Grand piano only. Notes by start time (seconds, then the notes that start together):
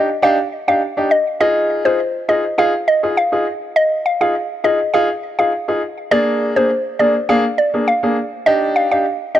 0.22 D4 D#4 G4
0.68 D4 D#4 G4
0.97 D4 D#4 G4
1.40 D#4 F4 G#4
1.85 D#4 F4 G#4
2.28 D#4 F4 G#4
2.58 D#4 F4 G#4
3.03 D#4 F4 G#4
3.32 D#4 F4 G#4
4.21 D#4 F4 G#4
4.64 D#4 F4 G#4
4.94 D#4 F4 G#4
5.39 D#4 F4 G#4
5.68 D#4 F4 G#4
6.11 A#3 D4 G#4
6.56 A#3 D4 G#4
7.00 A#3 D4 G#4
7.29 A#3 D4 G#4
7.74 A#3 D4 G#4
8.03 A#3 D4 G#4
8.46 D4 D#4 G4
8.91 D4 D#4 G4
9.35 D4 D#4 G4